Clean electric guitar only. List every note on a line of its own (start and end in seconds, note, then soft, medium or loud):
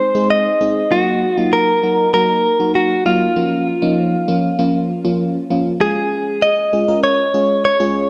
0.00 0.30 C5 loud
0.30 0.93 D#5 loud
0.92 1.37 F#4 loud
1.37 1.54 F4 loud
1.53 2.13 A#4 medium
2.14 2.71 A#4 medium
2.75 3.04 F#4 medium
3.06 5.16 F4 medium
5.81 6.44 G#4 loud
6.42 7.00 D#5 loud
7.04 7.64 C#5 loud
7.65 8.10 C#5 loud